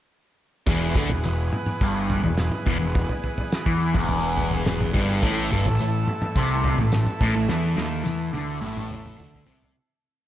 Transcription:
0.67 0.94 E1 loud
0.67 0.95 E2 medium
0.67 5.19 E3 medium
0.67 5.19 B3 medium
0.67 5.19 G#4 medium
0.67 5.19 B4 medium
0.67 kick loud
0.67 floor tom medium
0.95 1.08 D2 medium
0.95 1.09 D3 loud
0.95 kick medium
0.95 floor tom medium
1.09 1.22 E1 medium
1.09 1.24 E2 medium
1.09 floor tom medium
1.23 1.50 E1 medium
1.23 1.47 E2 medium
1.23 tambourine medium
1.53 mid tom medium
1.66 mid tom medium
1.81 2.21 G1 medium
1.81 2.23 G2 loud
1.81 kick medium
1.81 floor tom medium
2.10 floor tom medium
2.24 2.50 E1 medium
2.24 2.47 E2 medium
2.24 floor tom medium
2.37 snare medium
2.37 mid tom medium
2.37 tambourine medium
2.52 mid tom medium
2.66 2.80 E1 medium
2.66 2.78 E2 loud
2.66 kick loud
2.66 floor tom medium
2.79 3.08 E1 medium
2.79 3.03 E2 medium
2.95 kick loud
2.95 floor tom medium
3.09 floor tom medium
3.24 floor tom medium
3.38 floor tom medium
3.52 snare medium
3.52 tambourine medium
3.66 3.93 E2 medium
3.66 3.94 E3 loud
3.66 kick loud
3.94 4.90 E1 loud
3.94 4.93 E2 medium
3.94 kick loud
3.94 mid tom medium
4.09 floor tom medium
4.37 floor tom medium
4.51 floor tom medium
4.65 snare medium
4.65 mid tom medium
4.65 tambourine medium
4.81 floor tom medium
4.81 mid tom medium
4.93 5.21 G1 medium
4.93 5.21 G2 loud
4.93 kick loud
4.93 floor tom medium
5.21 5.49 A1 medium
5.21 5.50 A2 loud
5.21 9.71 E3 medium
5.21 9.71 A3 medium
5.21 9.72 A4 medium
5.21 9.71 E5 medium
5.21 kick loud
5.21 floor tom medium
5.51 5.64 G1 medium
5.51 5.65 G2 loud
5.51 floor tom medium
5.65 5.78 A1 medium
5.65 5.79 A2 medium
5.65 floor tom medium
5.78 6.06 A1 medium
5.78 6.03 A2 medium
5.78 tambourine medium
6.08 mid tom medium
6.22 mid tom medium
6.36 6.76 C2 medium
6.36 6.78 C3 loud
6.36 kick loud
6.36 floor tom medium
6.64 floor tom medium
6.78 7.05 A1 medium
6.78 7.02 A2 medium
6.78 floor tom medium
6.92 snare medium
6.92 mid tom medium
6.92 tambourine medium
7.07 mid tom medium
7.21 7.34 A1 loud
7.21 7.35 A2 medium
7.21 kick loud
7.21 floor tom medium
7.35 7.48 A1 medium
7.35 7.49 A2 medium
7.48 7.75 E2 medium
7.48 7.76 E3 loud
7.48 snare medium
7.77 8.04 D#2 medium
7.77 8.04 D#3 loud
7.77 snare medium
8.05 8.32 E2 medium
8.05 8.32 E3 loud
8.05 high tom medium
8.05 tambourine medium
8.33 8.60 D2 loud
8.33 8.60 D3 medium
8.33 high tom medium
8.61 9.15 A1 medium
8.61 9.17 A2 medium
8.61 mid tom medium
8.77 mid tom medium
8.91 mid tom medium
9.06 mid tom medium
9.18 9.45 D2 medium
9.18 9.46 D3 loud
9.18 mid tom loud
9.18 tambourine medium
9.34 floor tom medium
9.46 9.73 C2 medium
9.46 9.74 C3 medium
9.46 floor tom medium
9.62 floor tom medium

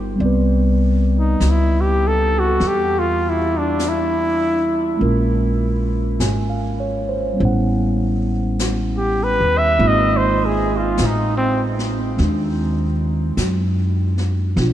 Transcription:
0.00 0.17 G1 medium
0.00 0.14 G3 soft
0.00 0.21 B3 soft
0.00 0.22 D#4 soft
0.00 0.22 F4 soft
0.00 0.22 A#4 medium
0.15 4.98 G3 soft
0.15 5.00 C4 soft
0.15 brush sweep soft
0.20 1.37 C2 medium
0.20 5.02 B3 soft
0.20 5.01 D5 soft
0.26 5.04 B4 medium
1.19 1.52 D#4 medium
1.40 2.57 C#2 medium
1.40 brush sweep soft
1.40 snare soft
1.40 hi-hat pedal soft
1.50 1.83 E4 medium
1.81 2.09 G4 medium
2.08 2.41 A4 medium
2.39 2.69 F#4 medium
2.60 4.97 E2 medium
2.60 brush sweep soft
2.60 snare soft
2.67 3.01 G4 medium
2.99 3.31 F4 medium
3.30 3.60 E4 medium
3.58 3.90 D4 medium
3.79 brush sweep soft
3.79 snare soft
3.79 hi-hat pedal soft
3.89 5.05 E4 medium
4.97 6.17 A#1 medium
4.97 7.39 G#3 soft
4.97 7.39 A#3 soft
4.97 7.38 C#4 soft
4.97 brush sweep soft
5.01 7.41 F4 soft
5.01 7.41 A#4 soft
6.20 7.36 G#1 medium
6.20 6.77 G#5 soft
6.20 brush sweep soft
6.20 snare soft
6.20 hi-hat pedal medium
6.50 7.02 F5 soft
6.80 7.17 C#5 soft
7.09 7.52 C5 soft
7.34 9.76 G3 soft
7.34 9.77 B3 soft
7.39 9.37 A1 medium
7.39 9.79 C#4 soft
7.39 9.80 E4 soft
7.39 brush sweep soft
7.45 9.82 F#5 soft
8.59 brush sweep soft
8.59 snare soft
8.59 hi-hat pedal medium
8.97 9.25 G4 medium
9.24 9.60 B4 medium
9.40 9.77 D#2 medium
9.58 9.89 E5 medium
9.78 10.95 G#1 medium
9.78 12.16 G#3 soft
9.78 14.57 A#3 soft
9.78 14.57 C4 soft
9.78 14.57 D#4 soft
9.78 14.58 F4 medium
9.78 brush sweep soft
9.88 10.19 D#5 medium
10.17 10.47 C5 medium
10.46 10.79 G#4 medium
10.77 11.07 F4 medium
10.97 12.15 A1 medium
10.97 brush sweep soft
10.97 snare soft
10.97 hi-hat pedal medium
11.06 11.37 D#4 medium
11.37 11.62 C4 medium
11.79 snare soft
12.17 13.34 D#2 medium
12.17 14.56 G#3 soft
12.17 14.58 D4 soft
12.17 brush sweep soft
12.17 snare soft
13.37 14.53 F#2 medium
13.37 brush sweep soft
13.37 snare soft
13.37 hi-hat pedal soft
14.18 snare soft
14.56 14.73 B1 medium
14.56 14.73 B2 medium
14.56 14.73 F3 medium
14.56 14.73 D4 soft
14.56 brush sweep soft
14.56 snare soft
14.61 14.73 F4 medium

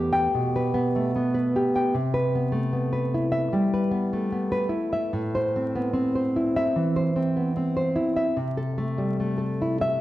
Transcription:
0.00 0.27 E2 medium
0.00 0.53 A3 medium
0.00 0.73 B3 medium
0.00 1.15 G4 medium
0.00 0.55 B4 medium
0.13 0.45 G5 loud
0.34 1.55 B2 medium
0.56 1.33 B4 medium
0.74 1.14 B3 medium
0.96 1.94 A3 medium
1.16 1.94 B3 medium
1.34 1.93 B4 medium
1.56 1.94 G4 medium
1.76 1.94 G5 medium
1.94 3.48 C3 medium
2.14 2.91 B4 medium
2.35 2.72 B3 medium
2.52 3.71 A3 medium
2.73 3.90 B3 medium
2.93 3.31 B4 medium
3.14 4.32 E4 medium
3.32 3.63 E5 loud
3.53 4.71 G3 medium
3.74 4.51 B4 medium
3.91 4.31 B3 medium
4.13 5.12 A3 medium
4.32 5.12 B3 medium
4.52 4.92 B4 medium
4.69 5.11 E4 medium
4.93 5.12 E5 medium
5.13 6.72 A2 medium
5.35 6.14 C5 medium
5.56 5.92 C4 medium
5.76 6.97 B3 medium
5.93 7.15 C4 medium
6.15 6.56 C5 medium
6.36 7.57 E4 medium
6.56 6.88 E5 medium
6.76 7.97 E3 medium
6.96 7.75 C5 medium
7.16 7.55 C4 medium
7.37 8.37 B3 medium
7.57 8.37 C4 medium
7.77 8.16 C5 medium
7.96 8.36 E4 medium
8.16 8.37 E5 medium
8.37 9.98 C3 medium
8.57 9.37 A4 medium
8.78 9.19 A3 medium
8.98 10.01 G3 medium
9.20 10.01 A3 medium
9.38 10.01 A4 medium
9.62 9.81 E4 medium
9.81 10.01 E5 medium

